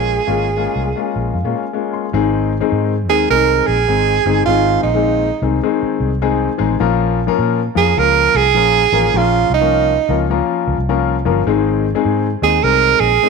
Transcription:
Already playing: A#1 G#3 A#3 C#4 F4 G#4
0.27 G#1 G#3 A#3 C#4 F4
0.57 G#3 A#3 C#4 F4
0.76 C2
0.96 G#3 A#3 C#4 F4
1.16 A#1
1.34 F2 F5
1.44 A#2 G#3 A#3 C#4 F4
1.56 G#5
1.73 G#3 A#3 C#4 F4
1.93 C6
2.13 G#1 D#3 G#3 C4 D#4 G#4
2.60 D#3 G#3 C4 D#4 G#4
2.72 G#2
3.09 D#2 D#3 G#3 C4 D#4 G#4 A#4
3.30 C2 D#3 G#3 C4 D#4 G#4 A#4
3.67 A#1 G#4
3.88 G#1 D#3 G#3 C4 D#4 G#4
4.25 G1 D#3 G#3 C4 D#4 G#4
4.46 G#1 D#3 G#3 C4 D#4 F4 G#4
4.83 A#1 D#4
4.94 D#3 G#3 C4 D#4 G#4
5.42 C2 D#3 G#3 C4 D#4 G#4
5.63 D#3 G#3 C4 D#4 G#4
5.83 muted fingered electric bass stroke
6.00 C2
6.22 D#3 G#3 C4 D#4 G#4
6.58 A1 D#3 G#3 C4 D#4 G#4
6.80 A#1 F3 A#3 C#4 F4 A#4
7.27 F3 A#3 C#4 F4 A#4
7.39 A#2
7.75 F2 F3 A#3 C#4 F4 G#4 A#4
7.97 C#2 F3 A#3 C#4 F4 A#4
8.34 C2 G#4
8.55 A#1 F3 A#3 C#4 F4 A#4
8.92 A1 F3 A#3 C#4 F4 A#4
9.14 A#1 F3 A#3 C#4 F4 A#4
9.50 C2
9.54 D#4
9.60 F3 A#3 C#4 F4 A#4
10.09 C#2 F3 A#3 C#4 F4 A#4
10.30 F3 A#3 C#4 F4 A#4
10.67 C#2
10.78 C2
10.89 F3 A#3 C#4 F4 A#4
11.25 G1 F3 A#3 C#4 F4 A#4
11.47 G#1 D#3 G#3 C4 D#4 G#4
11.95 D#3 G#3 C4 D#4 G#4
12.05 G#2
12.42 D#2 D#3 G#3 C4 D#4 G#4
12.63 C2 D#3 G#3 C4 D#4 G#4 A#4
13.00 A#1 G#4
13.22 D#3 G#3 C4 D#4 G#4

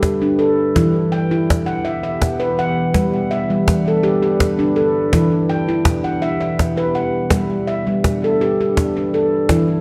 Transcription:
Already playing: G3 D4 G4 B4
0.03 cajon bass, cajon slap
0.22 D4
0.39 A4
0.76 E3 B3 E4 G4, cajon bass, cajon slap
0.96 cajon slap
1.12 G5
1.31 E4
1.50 cajon bass, cajon slap
1.66 F#5, cajon slap
1.85 E5
2.03 E5
2.22 cajon bass, cajon slap
2.40 B4
2.59 F#5
2.94 G3 D4 B4, cajon bass, cajon slap
3.13 cajon slap
3.31 E5
3.50 G3
3.68 cajon bass, cajon slap
3.88 A4
4.03 G4
4.22 G4
4.40 cajon bass, cajon slap
4.59 D4
4.76 A4
5.13 E3 B3 E4 G4, cajon bass, cajon slap
5.49 G5, cajon slap
5.69 E4
5.85 cajon bass, cajon slap
6.04 F#5
6.22 E5
6.40 E5
6.59 cajon bass, cajon slap
6.77 B4
6.95 F#5
7.30 G3 D4 B4, cajon bass, cajon slap
7.50 cajon slap
7.67 E5
7.87 G3
8.04 cajon bass, cajon slap
8.24 A4
8.41 G4
8.61 G4
8.77 cajon bass, cajon slap
8.97 D4
9.14 A4
9.49 E3 B3 E4 G4, cajon bass, cajon slap
9.68 cajon slap

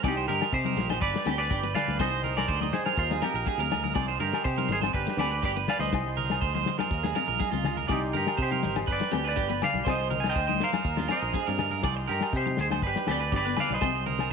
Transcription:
0.03 C2 C4 D#4 D5 D#5 G5 C6, kick, snare, low agogo, maracas
0.08 G4
0.17 C5, snare, maracas
0.28 G2 D#4 G4 A#4, low conga, maracas
0.42 snare, low agogo
0.53 C3 G4 C5, kick, maracas
0.65 D#4 A#4, high conga
0.76 A#1 D#4, snare, maracas
0.89 D4 C5, snare, high conga, low agogo
1.01 G1 B4 D5 B5, kick, maracas
1.14 D4, snare
1.25 D2 C4 G4, snare, low agogo, maracas
1.38 B4 D5, maracas
1.50 G1 D4 G4, kick, maracas
1.63 B3 B4, maracas
1.74 B4 D5 F5, snare, low conga, low agogo, maracas
1.88 D2, high conga
1.99 C2 C4 D#4 C5 D#5 C6, kick, snare, low agogo, maracas
2.12 maracas
2.23 D#4 A#4, low conga, maracas
2.37 A#4 D5, snare, low agogo
2.46 D2 C5, kick, maracas
2.61 D#4 D#5, high conga
2.72 D#4 G#4 C5, snare, low conga, maracas
2.86 D4 A#4, snare, low agogo
2.96 D#2 F4 C5 D#5 F5 A#5, kick, maracas
3.11 D4 G#4, snare
3.21 C4 G4 A#4, snare, low agogo, maracas
3.34 A#1 A#4, maracas
3.45 D4 G#4, kick, maracas
3.58 D2 C4 A#4, snare, maracas
3.70 snare, low conga, low agogo, maracas
3.84 A#4, high conga
3.95 C2 C4 D5 G5 C6, kick, snare, low agogo, maracas
4.08 C5, snare, maracas
4.20 G2 D#4 G4 A#4, low conga
4.33 snare, low agogo
4.44 C3 G4 C5, muted clean electric guitar stroke, kick, maracas
4.58 D#4 A#4, high conga
4.68 G#1 D#4 C5, snare, low conga, maracas
4.73 G#4
4.81 C4 C5, snare, high conga, low agogo
4.93 G1 G4 B4 D5 B5, kick, maracas
5.07 D4, snare
5.17 D2 C4 G4 B4 D5, snare, low agogo
5.31 B4, maracas
5.42 G1 D4 G4 B4 D5, kick, snare, maracas
5.56 B3 B4, snare, maracas
5.68 B4 D5 F5, snare, low conga, low agogo, maracas
5.79 D2 C5 D#5, high conga
5.93 C2 D#4 D#5 C6, muted clean electric guitar stroke, kick, snare, low agogo, maracas
6.06 snare
6.17 A#4, low conga, maracas
6.30 snare, low agogo, maracas
6.41 D2 C5, kick, maracas
6.55 D#4 C5, high conga
6.66 D#4, snare, low conga, maracas
6.79 D4 A#4, snare, high conga, low agogo, maracas
6.91 D#2 F5 A#5, kick, maracas
7.03 D4 G#4, snare
7.15 C4 A#4, snare, low conga, low agogo, maracas
7.28 A#1 A#4, high conga, maracas
7.39 D4 G#4, kick, snare, high conga, maracas
7.52 C#2 C4 F4, high conga
7.64 snare, low conga, low agogo, maracas
7.77 A#4, low conga
7.88 C2 C4 D#4 G4 D5 G5 C6, kick, snare, low agogo, maracas
8.02 maracas
8.13 G2 D#4 G4 A#4, low conga, maracas
8.27 snare, low agogo
8.38 C3 C5, kick, maracas
8.42 G4 C5
8.51 D#4 A#4, high conga
8.63 G#1 D#4, snare, low conga, maracas
8.76 D4, snare, high conga, low agogo
8.87 G1 B4 D5 B5, kick, maracas
8.91 B4 D5
9.00 D4, snare
9.11 D2 C4 G4, snare, low agogo, maracas
9.24 B4, maracas
9.29 D5
9.36 G1 D4 G4, kick, snare, maracas
9.49 B3 B4, snare, maracas
9.62 D5 F5, snare, low conga, low agogo, maracas
9.74 B1, high conga
9.85 C2 C4 C5 D#5 C6, kick, snare, low agogo, maracas
9.90 D#5
9.99 snare, maracas
10.10 D#4 A#4, low conga, maracas
10.20 G#5, snare, low agogo
10.29 D#5 G5
10.35 D2 C5, kick, maracas
10.48 D#4 C5, high conga
10.60 D#4 A#4 F5, snare, low conga, maracas
10.73 D4 A#4, snare, high conga, low agogo
10.84 D#2 F5 A#5, kick, maracas
10.97 D4 F4, snare
11.08 C4 A#4 C5 D#5, snare, low agogo, maracas
11.22 A#1 A#4, maracas
11.33 D4 G#4, kick, snare, maracas
11.46 G2 C4 A#4 D5, maracas
11.58 snare, low conga, low agogo, maracas
11.71 A#4, high conga
11.83 C2 D5 D#5 G5 C6, muted steel-string acoustic guitar stroke, kick, snare, low agogo, maracas
11.97 muted clean electric guitar stroke, maracas
12.08 G2 D#4 G4 A#4, maracas
12.21 snare, low agogo
12.33 C3 G4, kick, maracas
12.37 C5
12.46 D#4, muted clean electric guitar stroke, high conga
12.57 D2 D#4 G#4 C5, snare, low conga, maracas
12.70 D4 C5, snare, high conga, low agogo
12.82 G1 B4 D5 B5, kick, maracas
12.87 G4 B4
12.96 D4, snare
13.07 D2 C4 G4 B4, snare, low agogo, maracas
13.11 D5
13.20 B4, maracas
13.32 G1 D4 G4, kick, snare, maracas
13.36 B4 D5
13.45 B3 B4, maracas
13.56 B4 D5 F5, snare, low conga, low agogo, maracas
13.70 B1 C5, high conga
13.74 D#5
13.81 C2 C4 C5 D#5 C6, kick, snare, low agogo, maracas
13.94 snare, maracas
14.06 D#4 A#4, low conga, maracas
14.19 snare, low agogo, maracas

